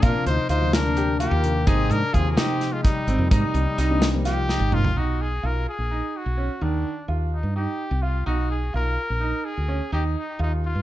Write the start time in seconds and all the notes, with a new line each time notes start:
Already playing: C3 F3 A#3 C4
0.02 A#2 D4 F4 A#4, kick, closed hi-hat
0.26 D2 D#4 C5, closed hi-hat
0.49 D2 D#4 F4 C5, closed hi-hat
0.61 C3 F3 A#3 F4
0.73 D4 A#4, snare, closed hi-hat
0.86 C3 F3 A#3 D4
0.97 G4, closed hi-hat
1.20 A#3 F4 G4, closed hi-hat
1.31 D#2
1.44 C3 F3 A#3 D4, closed hi-hat
1.66 G#1 C3 F3 A#3 C4 D#4 G#4, kick, closed hi-hat
1.90 G#2 D4 A#4, closed hi-hat
2.13 D#2 C3 F3 A#3 C4 F4 G#4, kick, closed hi-hat
2.30 C4 G#4
2.37 C3 F3 A#3 C4 D#4 G4, snare, closed hi-hat
2.61 snare, closed hi-hat
2.72 G#3 F4
2.83 G3 D#4, kick, snare, closed hi-hat
3.07 G#1 C4, closed hi-hat
3.18 F2 C3 F3 A#3 D#4
3.30 G#2 G3 D#4, kick, closed hi-hat
3.54 C2, closed hi-hat
3.78 C2 D#4, snare, closed hi-hat
3.91 C3 F3 A#3 D4
4.02 snare, closed hi-hat
4.13 C3 F3 A#3 D#4
4.25 F4 G4, snare, closed hi-hat
4.49 D#4, snare
4.60 G#1
4.72 C3 F3 A#3 D#4 F4, mid tom
4.84 floor tom
4.96 B1 D#4 F#4
5.21 G#4
5.43 B1 F4 A#4
5.69 G#4
5.78 A#1
5.91 D#4
6.17 F#4
6.26 B1
6.37 C#4
6.61 D#2 D#3 D4
7.08 D#2 F4
7.33 D#4
7.43 G2
7.56 D#4 G4
7.91 C2
8.02 F4
8.26 B1 D#4 F#4
8.51 G#4
8.74 B1 F4 A#4
9.10 A#1
9.20 D#4
9.45 G#4
9.57 D2
9.68 C#4
9.92 D#2 D#4 G4
10.18 D#4
10.39 D#2 D#4 F4
10.65 F4
10.75 G2